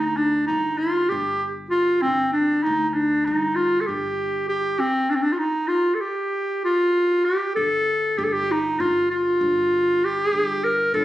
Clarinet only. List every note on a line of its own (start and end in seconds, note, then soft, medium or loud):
0.00 0.18 D#4 medium
0.17 0.46 D4 medium
0.47 0.80 D#4 medium
0.78 1.11 F4 medium
1.09 1.45 G4 medium
1.70 2.04 F4 medium
2.02 2.32 C4 medium
2.32 2.65 D4 medium
2.63 2.90 D#4 medium
2.90 3.27 D4 medium
2.90 2.95 D#4 medium
3.25 3.57 D#4 medium
3.56 3.82 F4 medium
3.81 3.88 A4 medium
3.87 4.48 G4 medium
4.49 4.81 G4 medium
4.80 5.12 C4 medium
5.10 5.17 D4 medium
5.16 5.24 C4 medium
5.22 5.34 D4 medium
5.32 5.40 F4 medium
5.39 5.69 D#4 medium
5.68 5.96 F4 medium
5.95 6.03 A4 medium
6.01 6.64 G4 medium
6.65 7.26 F4 medium
7.25 7.55 G4 medium
7.56 8.19 A4 loud
8.18 8.26 G4 medium
8.24 8.34 A4 medium
8.33 8.53 G4 loud
8.52 8.81 D#4 medium
8.80 9.10 F4 medium
9.11 10.06 F4 medium
10.05 10.66 G4 loud
10.64 10.94 A#4 medium
10.94 11.05 A4 loud